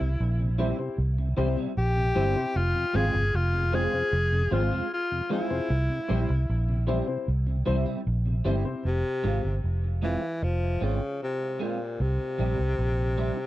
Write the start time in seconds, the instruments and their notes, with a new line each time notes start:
Already playing: tenor saxophone E4
0.00 fingered electric bass C2, tonewheel organ C3
0.20 fingered electric bass A#1
0.39 tonewheel organ C3
0.58 tonewheel organ E3 G3 C4, clean electric guitar G3 C4 E4, upright piano C4 E4 G4 C5
0.78 tonewheel organ C3, upright piano C4 E4 G4 C5
0.98 fingered electric bass C2
1.18 tonewheel organ C3
1.37 fingered electric bass C2, tonewheel organ E3 G3 C4, clean electric guitar G3 C4 E4, upright piano C4 E4 G4 C5
1.56 tonewheel organ C3, clean electric guitar G3 C4 E4
1.77 fingered electric bass A#1, tenor saxophone G4
1.96 tonewheel organ C3
2.15 fingered electric bass G1, tonewheel organ E3 G3 C4, clean electric guitar G3 C4 E4, upright piano C4 E4 G4 C5
2.35 tonewheel organ C3, upright piano C4 E4 G4 C5
2.56 fingered electric bass F1, tenor saxophone F4
2.75 tonewheel organ F2 C3
2.93 fingered electric bass G#1, tonewheel organ F3 G#3 C4, clean electric guitar G#3 C4 F4, upright piano C4 F4 G#4 C5, tenor saxophone G#4
3.14 fingered electric bass G1, tonewheel organ F2 C3
3.34 fingered electric bass F1, tenor saxophone F4
3.54 tonewheel organ F2 C3
3.72 tonewheel organ F3 G#3 C4, clean electric guitar G#3 C4 F4, upright piano C4 F4 G#4 C5, tenor saxophone G#4
3.92 tonewheel organ F2 C3, upright piano C4 F4 G#4 C5
4.13 fingered electric bass F1
4.32 tonewheel organ F2 C3
4.51 fingered electric bass G#1, tonewheel organ F3 G#3 C4, clean electric guitar G#3 C4 F4, upright piano C4 F4 G#4 C5, tenor saxophone F4
4.71 tonewheel organ F2 C3, clean electric guitar G#3 C4 F4
4.94 tenor saxophone F4
5.11 tonewheel organ F2 C3
5.29 tonewheel organ F3 G#3 C4, clean electric guitar G#3 C4 F4, upright piano C4 F4 G#4 C5, tenor saxophone E4
5.49 tonewheel organ F2 C3, upright piano C4 F4 G#4 C5, muted clean electric guitar stroke
5.70 fingered electric bass C2
5.90 tonewheel organ C3
6.08 fingered electric bass A#1, tonewheel organ E3 G3 C4, clean electric guitar G3 C4 E4, upright piano C4 E4 G4 C5
6.29 fingered electric bass C2, tonewheel organ C3
6.49 fingered electric bass A#1
6.69 tonewheel organ C3
6.87 tonewheel organ E3 G3 C4, clean electric guitar G3 C4 E4, upright piano C4 E4 G4 C5
7.06 tonewheel organ C3, upright piano C4 E4 G4 C5
7.28 fingered electric bass C2
7.47 tonewheel organ C3
7.65 fingered electric bass C2, tonewheel organ E3 G3 C4, clean electric guitar G3 C4 E4, upright piano C4 E4 G4 C5
7.85 tonewheel organ C3, clean electric guitar G3 C4 E4
8.07 fingered electric bass A#1
8.26 tonewheel organ C3
8.44 fingered electric bass G1, tonewheel organ E3 G3 C4, clean electric guitar G3 C4 E4, upright piano C4 E4 G4 C5
8.64 tonewheel organ C3, upright piano C4 E4 G4 C5
8.85 fingered electric bass F1, tenor saxophone C3
9.23 fingered electric bass G#1, clean electric guitar G#3 C4 F4
9.44 fingered electric bass G1
9.64 fingered electric bass F1
10.02 tenor saxophone E3, clean electric guitar G#3 C4 F4
10.42 fingered electric bass F1, tenor saxophone F3
10.81 fingered electric bass G#1, tenor saxophone C#3, clean electric guitar G#3 C4 F4
11.23 tenor saxophone C3
11.60 tenor saxophone A#2, clean electric guitar G#3 C4 F4
12.00 fingered electric bass C2, tenor saxophone C3
12.38 fingered electric bass A#1, clean electric guitar G3 C4 E4
12.59 fingered electric bass C2
12.79 fingered electric bass A#1
13.17 clean electric guitar G3 C4 E4
13.37 muted clean electric guitar stroke